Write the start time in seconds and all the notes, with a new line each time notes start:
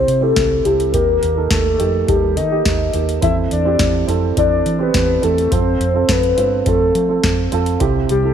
Already playing: C3 C4 E4 G4 C5
0.08 C3, closed hi-hat
0.21 C4 E4 G4 A4
0.36 C2, kick, snare, closed hi-hat
0.64 C2 C4 E4 G4 A4, closed hi-hat
0.80 closed hi-hat
0.92 D#2 D#3 A#3 D#4 G4 A#4, kick, closed hi-hat
1.23 D#2, closed hi-hat
1.36 A#3 D#4 A4
1.51 D#2 A4, kick, snare, closed hi-hat
1.79 F2 A#3 D#4 G4, closed hi-hat
2.07 D#2 A#3 D#4 G4 A4, kick, closed hi-hat
2.37 D#3 D#5, closed hi-hat
2.51 A#3 D#4 G4
2.65 D#2, kick, snare, closed hi-hat
2.93 D#2 A#3 D#4 G4, closed hi-hat
3.09 closed hi-hat
3.21 E2 E3 C4 E4 A4 E5, kick, closed hi-hat
3.51 E2 D5, closed hi-hat
3.65 C4 E4 G4
3.79 E2, kick, snare, closed hi-hat
4.07 F2 C4 E4 A4, closed hi-hat
4.37 E2 C4 E4 A4 D5, kick, closed hi-hat
4.66 E3, closed hi-hat
4.79 C4 E4 G4 B4
4.94 E2, kick, snare, closed hi-hat
5.22 E2 C4 E4 A4, closed hi-hat
5.38 closed hi-hat
5.51 F2 C4 F4 A4 C5, kick, closed hi-hat
5.80 F2, closed hi-hat
5.94 C4 F4 A4
6.09 F2 B4, kick, snare, closed hi-hat
6.23 closed hi-hat
6.37 G2 C4 F4 C5, closed hi-hat
6.66 F2 C4 F4 A4, kick, closed hi-hat
6.95 F3, closed hi-hat
7.09 C4 F4 A4
7.24 F2, kick, snare, closed hi-hat
7.52 F2 C4 F4 A4, closed hi-hat
7.66 closed hi-hat
7.80 C2 C3 C4 E4 G4, kick, closed hi-hat
8.09 C2 G4, closed hi-hat
8.23 C4 E4 A4